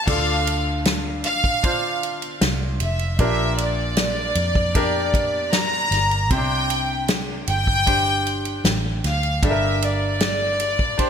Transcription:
0.07 1.24 D2 loud
0.07 1.21 D3 medium
0.07 1.55 D4 medium
0.07 1.56 F4 medium
0.07 1.56 A4 medium
0.07 0.86 F5 medium
0.07 kick loud
0.07 crash loud
0.47 ride medium
0.85 snare loud
0.85 ride medium
1.24 2.37 A1 medium
1.24 2.38 F5 loud
1.24 ride medium
1.44 kick medium
1.63 3.11 D4 medium
1.63 3.12 F4 medium
1.63 3.12 C5 medium
1.63 kick medium
1.63 ride medium
2.03 ride medium
2.22 ride soft
2.41 2.78 C2 medium
2.41 snare loud
2.41 ride medium
2.80 3.17 F1 medium
2.80 3.18 E5 medium
2.80 ride medium
2.99 ride soft
3.18 4.32 A#1 loud
3.18 4.33 A#2 medium
3.18 4.68 D4 medium
3.18 4.68 G4 medium
3.18 4.68 A#4 medium
3.18 3.57 E5 medium
3.18 kick loud
3.18 ride medium
3.58 5.54 D5 medium
3.58 ride medium
3.97 snare loud
3.97 ride medium
4.35 5.88 F2 medium
4.35 ride medium
4.55 kick medium
4.75 6.23 D4 medium
4.75 6.23 G4 medium
4.75 6.24 A#4 medium
4.75 kick medium
4.75 ride medium
5.14 kick medium
5.14 ride medium
5.53 6.32 A#5 loud
5.53 snare medium
5.53 ride medium
5.91 6.31 G1 medium
5.91 snare soft
5.91 ride medium
6.11 ride soft
6.30 7.44 C2 loud
6.30 7.44 C3 medium
6.30 6.37 C4 medium
6.30 7.79 G4 medium
6.30 7.79 C5 medium
6.30 7.10 G5 medium
6.30 kick loud
6.30 ride medium
6.36 7.82 D4 medium
6.70 ride medium
7.08 snare loud
7.08 ride medium
7.47 8.61 G1 medium
7.47 8.61 G5 loud
7.47 ride medium
7.67 kick medium
7.86 9.35 D4 medium
7.86 9.35 G4 medium
7.86 9.35 C5 medium
7.86 kick medium
7.86 ride medium
8.27 ride medium
8.45 ride soft
8.64 9.01 A1 medium
8.64 snare loud
8.64 ride medium
9.04 9.40 D2 medium
9.04 9.42 F5 medium
9.04 snare soft
9.04 ride medium
9.23 ride soft
9.42 11.10 G1 loud
9.42 10.56 G2 medium
9.42 10.91 D4 medium
9.42 10.91 G4 medium
9.42 9.50 A4 medium
9.42 9.83 E5 medium
9.42 kick loud
9.42 ride medium
9.51 10.95 A#4 medium
9.82 11.10 D5 loud
9.82 ride medium
10.20 snare loud
10.20 ride medium
10.60 ride medium
10.79 kick medium
10.98 11.10 D4 medium
10.98 11.10 G4 medium
10.98 11.10 C5 medium
10.98 kick medium
10.98 ride medium

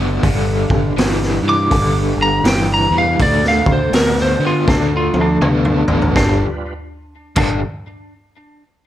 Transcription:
0.00 0.20 F#1 medium
0.00 0.21 D3 medium
0.00 0.21 A3 medium
0.00 0.21 B3 medium
0.00 0.21 D4 medium
0.00 0.21 F#4 medium
0.00 0.21 D5 medium
0.23 0.64 G1 medium
0.23 0.92 G2 medium
0.23 0.92 D3 loud
0.23 3.17 G3 medium
0.23 3.17 D4 medium
0.23 3.17 B4 medium
0.23 3.17 F5 medium
0.23 kick loud
0.23 open hi-hat soft
0.70 0.94 G1 medium
0.70 kick medium
0.96 1.38 G1 medium
0.96 1.39 G2 medium
0.96 1.39 E3 medium
0.96 snare loud
0.96 open hi-hat soft
1.23 snare soft
1.42 1.67 G2 medium
1.42 1.68 G2 medium
1.42 1.68 E3 medium
1.49 1.96 D6 loud
1.71 2.13 G1 medium
1.71 2.40 G2 medium
1.71 2.40 D3 medium
1.71 kick loud
1.71 open hi-hat medium
2.17 2.42 G1 medium
2.22 2.46 A#5 medium
2.44 2.86 G1 medium
2.44 2.87 G2 medium
2.44 2.88 E3 medium
2.44 snare loud
2.44 open hi-hat medium
2.48 2.71 G5 loud
2.74 2.96 A#5 medium
2.91 3.16 E2 medium
2.91 3.17 G2 medium
2.91 3.17 E3 medium
2.98 3.21 F5 medium
3.19 3.61 D2 medium
3.19 3.88 D3 medium
3.19 3.89 A3 medium
3.19 3.45 A#3 medium
3.19 3.45 D#4 medium
3.19 3.45 G4 medium
3.19 3.45 C#5 medium
3.19 3.45 D5 loud
3.19 kick loud
3.19 open hi-hat soft
3.44 6.14 A3 medium
3.44 6.14 D4 medium
3.44 6.14 F#4 medium
3.44 6.14 D5 medium
3.44 snare soft
3.48 3.70 F5 medium
3.66 3.90 D2 medium
3.66 kick medium
3.72 3.95 C5 medium
3.92 4.34 D2 medium
3.92 4.36 D3 medium
3.92 4.36 B3 medium
3.92 4.19 A#4 medium
3.92 snare loud
3.92 open hi-hat medium
4.18 snare soft
4.22 4.44 C5 medium
4.39 4.64 D3 medium
4.39 4.65 D3 medium
4.39 4.65 B3 medium
4.47 4.69 F4 medium
4.68 5.09 D2 medium
4.68 5.36 D3 medium
4.68 5.37 A3 medium
4.68 4.93 D4 medium
4.68 kick loud
4.68 snare medium
4.97 5.19 F4 medium
5.14 5.38 D2 medium
5.14 high tom medium
5.21 6.15 D4 loud
5.41 5.82 D2 medium
5.41 5.84 D3 medium
5.41 5.84 B3 medium
5.41 mid tom medium
5.65 mid tom medium
5.88 6.12 A1 medium
5.88 6.13 D3 medium
5.88 6.14 B3 medium
5.88 floor tom medium
6.02 floor tom medium
6.15 6.42 G1 medium
6.15 6.44 G2 medium
6.15 6.44 D3 loud
6.15 6.74 G3 medium
6.15 6.45 G3 loud
6.15 6.43 D4 medium
6.15 6.74 D4 medium
6.15 6.74 F4 medium
6.15 6.74 B4 medium
6.15 kick loud
6.15 snare medium
7.36 7.62 G1 medium
7.36 7.58 G2 medium
7.36 7.59 D3 loud
7.36 7.59 G3 loud
7.36 7.63 D4 medium
7.36 kick loud
7.36 crash medium

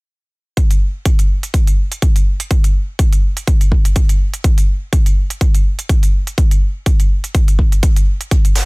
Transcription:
0.57 kick loud
0.57 closed hi-hat medium
0.71 closed hi-hat medium
1.05 kick loud
1.05 closed hi-hat medium
1.19 closed hi-hat medium
1.43 closed hi-hat soft
1.54 kick loud
1.54 closed hi-hat medium
1.67 closed hi-hat soft
1.92 closed hi-hat soft
2.02 kick loud
2.02 closed hi-hat medium
2.16 closed hi-hat soft
2.40 closed hi-hat soft
2.51 kick loud
2.51 closed hi-hat medium
2.64 closed hi-hat medium
2.99 kick loud
2.99 closed hi-hat medium
3.13 closed hi-hat medium
3.37 closed hi-hat soft
3.47 kick loud
3.47 closed hi-hat medium
3.61 closed hi-hat soft
3.72 kick medium
3.85 closed hi-hat soft
3.96 kick loud
3.96 closed hi-hat medium
4.09 closed hi-hat medium
4.34 closed hi-hat soft
4.44 kick loud
4.44 closed hi-hat medium
4.58 closed hi-hat soft
4.93 kick loud
4.93 closed hi-hat medium
5.06 closed hi-hat soft
5.30 closed hi-hat soft
5.41 kick loud
5.41 closed hi-hat medium
5.55 closed hi-hat soft
5.79 closed hi-hat soft
5.89 kick loud
5.89 closed hi-hat medium
6.03 closed hi-hat soft
6.27 closed hi-hat soft
6.38 kick loud
6.38 closed hi-hat medium
6.51 closed hi-hat soft
6.86 kick loud
6.86 closed hi-hat medium
7.00 closed hi-hat soft
7.24 closed hi-hat soft
7.35 kick loud
7.35 closed hi-hat medium
7.48 closed hi-hat soft
7.59 kick medium
7.72 closed hi-hat soft
7.83 kick loud
7.83 closed hi-hat medium
7.96 closed hi-hat soft
8.21 closed hi-hat soft
8.31 kick loud
8.31 closed hi-hat medium
8.45 closed hi-hat soft
8.55 snare soft
8.55 closed hi-hat medium
8.55 open hi-hat loud

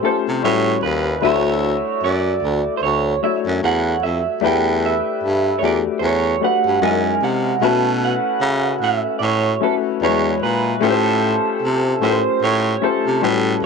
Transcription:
0.00 0.02 A3 medium
0.00 0.42 A3 medium
0.00 0.04 C#4 medium
0.00 0.41 C#4 medium
0.00 0.04 F4 medium
0.00 0.05 G4 medium
0.00 0.43 A4 medium
0.00 0.06 C5 medium
0.04 0.43 F4 medium
0.04 0.43 G4 medium
0.04 0.15 A4 medium
0.04 0.44 C5 medium
0.28 0.40 C3 medium
0.43 0.76 A2 medium
0.43 1.12 G3 medium
0.43 1.12 C#4 medium
0.43 1.13 E4 medium
0.43 1.13 F#4 medium
0.43 1.13 B4 medium
0.43 0.82 C#5 medium
0.83 1.15 D#2 medium
0.83 1.23 B4 medium
1.22 1.75 D2 loud
1.22 2.58 A3 medium
1.22 2.58 D4 medium
1.22 2.59 E4 medium
1.22 2.59 F#4 medium
1.22 2.04 C#5 medium
1.22 2.60 E5 medium
2.04 2.35 F#2 medium
2.04 2.77 D5 medium
2.42 2.62 D2 medium
2.77 2.82 C5 medium
2.82 3.15 D2 medium
2.82 3.20 C#5 medium
3.22 4.27 A3 medium
3.22 4.27 D4 medium
3.22 4.27 E4 medium
3.22 4.28 F#4 medium
3.22 4.28 C#5 medium
3.22 3.34 E5 medium
3.47 3.59 F#2 medium
3.63 3.95 E2 medium
3.63 4.03 F#5 medium
4.03 4.22 F2 medium
4.03 4.44 E5 medium
4.41 4.95 E2 medium
4.41 5.46 A3 medium
4.41 5.46 D4 medium
4.41 5.47 E4 medium
4.41 5.47 G4 medium
4.41 5.48 B4 medium
4.45 4.85 G5 loud
4.86 5.61 E5 medium
5.23 5.55 G2 medium
5.59 5.82 E2 medium
5.59 6.31 A3 medium
5.59 6.32 D4 soft
5.59 6.32 F#4 medium
5.59 5.63 C#5 medium
5.63 6.32 G4 medium
5.63 6.33 A4 medium
5.63 5.74 D5 medium
5.99 6.35 E2 medium
5.99 6.03 C5 medium
6.06 6.45 C#5 medium
6.41 6.81 A3 medium
6.41 6.82 D4 medium
6.41 6.82 F#4 medium
6.41 6.83 G4 medium
6.41 6.83 B4 medium
6.41 6.84 F#5 medium
6.67 6.79 G2 medium
6.81 7.14 F#2 loud
6.81 7.51 G#3 medium
6.81 7.51 C#4 medium
6.81 7.52 D#4 medium
6.81 7.52 E4 medium
6.81 7.53 A#4 medium
6.81 7.24 G#5 medium
7.22 7.55 C3 medium
7.22 7.64 F#5 medium
7.61 8.14 B2 medium
7.61 8.98 A3 medium
7.61 8.98 C#4 medium
7.61 8.98 E4 medium
7.61 8.99 F#4 medium
7.61 8.99 B4 medium
7.61 8.04 A5 loud
8.05 8.84 F#5 medium
8.42 8.74 C#3 medium
8.81 9.01 A2 medium
8.81 9.19 E5 medium
9.19 9.54 A2 medium
9.19 9.23 D5 medium
9.24 9.64 C#5 medium
9.60 10.01 A3 medium
9.60 10.02 C#4 medium
9.60 10.01 E4 medium
9.60 10.02 F#4 medium
9.60 9.74 A4 medium
9.60 10.02 B4 medium
10.01 10.35 E2 medium
10.01 10.10 F#3 medium
10.01 10.71 D4 medium
10.01 10.72 E4 medium
10.01 10.72 F#4 medium
10.01 10.72 B4 medium
10.01 10.43 C#5 medium
10.08 10.74 G#3 medium
10.42 10.75 A#2 medium
10.42 10.84 B4 medium
10.80 11.35 A2 medium
10.80 11.86 A3 medium
10.80 11.86 C#4 medium
10.80 11.87 F4 medium
10.80 11.87 G4 medium
10.80 12.06 A4 loud
10.80 10.91 B4 medium
10.90 11.91 C5 medium
11.62 11.95 C3 medium
12.01 12.22 A2 medium
12.01 12.71 A3 medium
12.01 12.72 C#4 medium
12.01 12.72 F4 medium
12.01 12.72 G4 medium
12.01 12.11 A#4 soft
12.01 12.44 C5 medium
12.11 12.76 C5 medium
12.42 12.75 A2 medium
12.42 12.84 C#5 medium
12.82 13.22 A3 medium
12.82 13.21 C#4 medium
12.82 13.22 F4 medium
12.82 13.23 G4 medium
12.82 13.59 A4 medium
12.82 13.23 C5 medium
13.07 13.19 C3 medium
13.22 13.55 A2 loud
13.22 13.66 G3 medium
13.22 13.66 C#4 medium
13.22 13.66 E4 medium
13.22 13.66 F#4 medium
13.22 13.66 B4 medium
13.62 13.66 D#2 medium

